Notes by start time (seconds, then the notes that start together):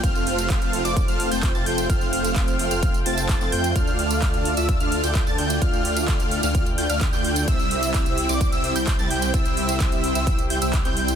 Already playing: F4
0.03 A3 C4 F4 A4 C5 F5 A5 F6, kick, closed hi-hat, tambourine
0.15 tambourine
0.27 open hi-hat
0.38 closed hi-hat, tambourine
0.50 kick, clap, closed hi-hat, tambourine
0.62 closed hi-hat, tambourine
0.73 open hi-hat
0.85 F1 A3 C4 F4 C5 D5 D6, closed hi-hat, tambourine
0.97 kick, closed hi-hat, tambourine
1.08 F1 A3 C4 F4 C5 F5 F6, closed hi-hat, tambourine
1.20 open hi-hat
1.31 F1 A3 C4 F4 C5 G5 G6, open hi-hat, tambourine
1.43 kick, clap, closed hi-hat, tambourine
1.55 F1 A3 C4 F4 C5 A5 A6, tambourine
1.66 F1 A3 C4 F4 C5 G5 G6, open hi-hat
1.78 closed hi-hat, tambourine
1.90 F1 A3 C4 F4 C5 F5 G5 F6, kick, closed hi-hat, tambourine
2.01 tambourine
2.13 open hi-hat
2.24 closed hi-hat, tambourine
2.36 kick, clap, closed hi-hat, tambourine
2.48 closed hi-hat, tambourine
2.59 open hi-hat
2.71 F1 A3 C4 F4 C5 F5 F6, closed hi-hat, tambourine
2.83 kick, closed hi-hat, tambourine
2.94 closed hi-hat, tambourine
3.06 F1 A3 C4 F4 C5 A5 A6, open hi-hat
3.18 closed hi-hat, tambourine
3.29 kick, clap, closed hi-hat, tambourine
3.41 F1 A3 C4 F4 C5 A5 A6, clap, tambourine
3.52 F2 A3 C4 F4 C5 G5 G6, open hi-hat
3.64 closed hi-hat, tambourine
3.76 D2 A3 D4 F4 D5 F5 A5 F6, kick, closed hi-hat, tambourine
3.87 tambourine
3.99 open hi-hat
4.11 closed hi-hat, tambourine
4.22 kick, clap, closed hi-hat, tambourine
4.34 closed hi-hat, tambourine
4.45 open hi-hat
4.57 D2 A3 D4 F4 D5 E5 E6, closed hi-hat, tambourine
4.69 kick, closed hi-hat, tambourine
4.80 D2 A3 D4 F4 D5 F5 F6, closed hi-hat, tambourine
4.92 open hi-hat
5.03 D2 A3 D4 F4 D5 G5 G6, open hi-hat, tambourine
5.15 kick, clap, closed hi-hat, tambourine
5.27 D2 A3 D4 F4 D5 A5 A6, tambourine
5.38 D2 A3 D4 F4 D5 G5 G6, open hi-hat
5.50 closed hi-hat, tambourine
5.62 D2 A3 D4 F4 D5 F5 G5 F6, kick, closed hi-hat, tambourine
5.73 tambourine
5.85 open hi-hat
5.97 closed hi-hat, tambourine
6.08 kick, clap, closed hi-hat, tambourine
6.20 closed hi-hat, tambourine
6.31 open hi-hat
6.43 D2 A3 D4 F4 D5 F5 F6, closed hi-hat, tambourine
6.55 kick, closed hi-hat, tambourine
6.66 closed hi-hat, tambourine
6.78 D2 A3 D4 F4 D5 G5 G6, open hi-hat
6.90 D2 A3 D4 F4 D5 F5 F6, closed hi-hat, tambourine
7.01 kick, clap, closed hi-hat, tambourine
7.13 D2 A3 D4 F4 D5 G5 G6, clap, tambourine
7.25 open hi-hat
7.36 closed hi-hat, tambourine
7.48 C2 G3 C4 E4 G4 C5 E5 G5 E6, kick, closed hi-hat, tambourine
7.59 tambourine
7.71 open hi-hat
7.83 closed hi-hat, tambourine
7.94 kick, clap, closed hi-hat, tambourine
8.06 closed hi-hat, tambourine
8.18 open hi-hat
8.29 C2 G3 C4 E4 C5 D5 D6, closed hi-hat, tambourine
8.41 kick, closed hi-hat, tambourine
8.52 C2 G3 C4 E4 C5 E5 E6, closed hi-hat, tambourine
8.64 open hi-hat
8.76 C2 G3 C4 E4 C5 G5 G6, open hi-hat, tambourine
8.87 kick, clap, closed hi-hat, tambourine
8.99 C2 G3 C4 E4 C5 A5 A6, tambourine
9.11 C2 G3 C4 E4 C5 G5 G6, open hi-hat
9.22 closed hi-hat, tambourine
9.34 C2 G3 C4 E4 C5 E5 E6, kick, closed hi-hat, tambourine
9.45 closed hi-hat, tambourine
9.57 open hi-hat
9.69 closed hi-hat, tambourine
9.80 kick, clap, closed hi-hat, tambourine
9.92 closed hi-hat, tambourine
10.04 open hi-hat
10.15 C2 G3 C4 E4 C5 E5 E6, closed hi-hat, tambourine
10.27 kick, closed hi-hat, tambourine
10.39 closed hi-hat, tambourine
10.50 C2 G3 C4 E4 C5 G5 G6, open hi-hat
10.62 C2 G3 C4 E4 C5 E5 E6, closed hi-hat, tambourine
10.73 kick, clap, closed hi-hat, tambourine
10.85 C2 G3 C4 E4 C5 G5 G6, clap, closed hi-hat, tambourine
10.97 open hi-hat
11.08 closed hi-hat, tambourine